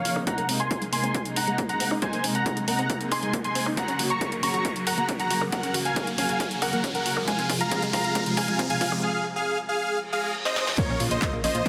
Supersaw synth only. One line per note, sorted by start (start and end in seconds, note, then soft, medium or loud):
0.00 0.17 C#5 medium
0.00 0.17 F5 medium
0.27 0.49 F#5 medium
0.27 0.49 A#5 loud
0.60 0.82 G#5 medium
0.60 0.82 C6 medium
0.93 1.23 G#5 medium
0.93 1.23 C6 loud
1.36 1.59 F#5 medium
1.36 1.59 A#5 medium
1.69 1.92 F#5 medium
1.69 1.92 A#5 medium
2.02 2.25 C5 medium
2.02 2.25 G#5 loud
2.35 2.57 F#5 medium
2.35 2.57 A#5 medium
2.68 2.98 F#5 medium
2.68 2.98 A#5 medium
3.12 3.34 G#5 medium
3.12 3.34 C6 medium
3.44 3.67 G#5 medium
3.44 3.67 C6 medium
3.77 4.00 F#5 medium
3.77 4.00 A#5 loud
4.10 4.33 A#5 medium
4.10 4.33 C#6 medium
4.43 4.73 A#5 medium
4.43 4.73 C#6 loud
4.87 5.09 F#5 medium
4.87 5.09 A#5 medium
5.20 5.42 F#5 medium
5.20 5.42 A#5 loud
5.53 5.75 A#4 medium
5.53 5.75 F#5 loud
5.85 6.08 F5 medium
5.85 6.08 G#5 medium
6.18 6.48 F5 medium
6.18 6.48 G#5 loud
6.62 6.84 A#4 medium
6.62 6.85 F#5 loud
6.95 7.17 A#4 medium
6.95 7.17 F#5 medium
7.28 7.50 F5 medium
7.28 7.50 G#5 loud
7.60 7.83 F5 medium
7.60 7.83 A#5 medium
7.93 8.23 F5 medium
7.93 8.23 A#5 loud
8.37 8.60 F5 medium
8.37 8.60 G#5 loud
8.70 8.92 F5 medium
8.70 8.92 G#5 medium
9.03 9.25 G#4 medium
9.03 9.25 F5 loud
9.36 9.58 G#4 medium
9.36 9.58 F5 loud
9.69 9.99 G#4 medium
9.69 9.99 F5 loud
10.12 10.35 G#4 medium
10.12 10.35 F5 loud
10.45 10.68 C5 medium
10.45 10.68 D#5 loud
10.78 11.01 A#4 medium
10.78 11.01 C#5 loud
11.11 11.33 C5 medium
11.11 11.33 D#5 medium
11.44 11.69 C5 medium
11.44 11.69 D#5 loud